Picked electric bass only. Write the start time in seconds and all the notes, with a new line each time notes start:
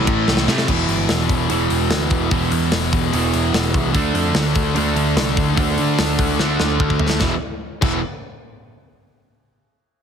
0.07 A2
0.28 C2
0.48 C3
0.68 E1
0.88 G1
1.09 E1
1.30 E1
1.50 E1
1.70 E1
1.90 D2
2.11 E1
2.31 E1
2.52 E2
2.72 E1
2.93 E1
3.13 E1
3.34 E1
3.53 E1
3.74 C2
3.94 D2
4.14 F2
4.35 D2
4.56 D2
4.76 D2
4.96 D2
5.16 C2
5.37 D2
5.57 D2
5.79 D3
5.99 D2
6.19 D2
6.40 D2
6.60 D2
6.80 D2
7.00 D2
7.20 E1
7.82 E1